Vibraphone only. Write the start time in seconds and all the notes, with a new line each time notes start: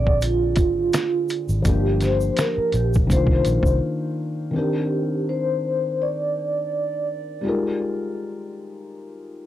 Already playing: D5
0.22 F4
1.68 G4
2.03 C5
2.39 A#4
2.76 G4
3.12 C5
4.56 G4
5.29 C5
6.02 D5